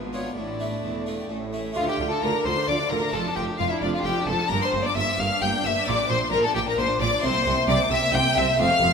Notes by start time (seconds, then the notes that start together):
Already playing: G#1 G#2 B3 D4 F4
0.13 B3 D4 F4 C#5
0.36 A1 A2 A3 D4 E4 D5
0.60 A3 D4 E4
0.83 E1 E2 E4
1.06 A3 D4 E4 F4
1.18 G4
1.29 A1 A2 A3 C#4 A4
1.53 A3 C#4 E4
1.72 D3 A3 D4 F4
1.76 D2 D3 F4 F5
1.88 D4 G4 G5
1.99 D2 D3 F4
2.10 D4 A4 A5
2.22 D2 D3 F4 A#4 A#5
2.35 D4
2.44 D2 D3 F4 C5 C6
2.57 D4
2.67 D2 D3 F4 D5 D6
2.80 D4
2.90 D2 D3 F4 A#4 A#5
3.02 D4
3.08 A3 D4
3.12 F1 F2 F4 A4 A5
3.26 D4
3.36 F1 F2 F4 G4 G5
3.49 D4
3.57 F1 F2 F4 F5
3.69 D4 E4 E5
3.81 F1 F2 D4 F4 D5
3.93 D4 F4 F5
4.04 F1 F2 F4 G4 G5
4.19 D4
4.27 F1 F2 F4 A4 A5
4.42 D4
4.47 G1 G2 D4 G4 A#4 A#5
4.51 G2 A#3 A#4
4.62 D4 C5 C6
4.72 G1 G2 A#3
4.85 D4 D5 D6
4.96 G1 G2 A#3 E5 E6
5.09 D4
5.18 G1 G2 A#3 F5 F6
5.32 D4
5.41 G1 G2 A#3 G5 G6
5.54 D4
5.64 G1 G2 A#3 E5 E6
5.77 D4
5.84 A#1 A#2 D4 G4 D5 D6
5.88 A#3 D5
6.00 D4
6.09 A#1 A#2 A#3 C5 C6
6.22 D4
6.31 A#1 A#2 A#3 A#4 A#5
6.42 D4 A4 A5
6.53 A#1 A#2 A#3 G4 G5
6.65 D4 A#4 A#5
6.77 A#1 A#2 A#3 C5 C6
6.90 D4
7.00 A#1 A#2 A#3 D5 D6
7.12 D4
7.18 A#3 E4 G4 C6
7.22 C2 C3 C4 C5
7.35 A#3
7.45 C2 C3 C4
7.58 A#3
7.67 C2 C3 C4 D5 D6
7.81 A#3
7.90 C2 C3 C4 E5 E6
8.03 A#3
8.13 C2 C3 C4 G5 G6
8.26 A#3
8.35 C2 C3 C4 E5 E6
8.49 A#3
8.55 F1 F2 A3 C4 F4 F5
8.59 F2 C4 F5 F6
8.71 A3
8.81 F1 F2 C4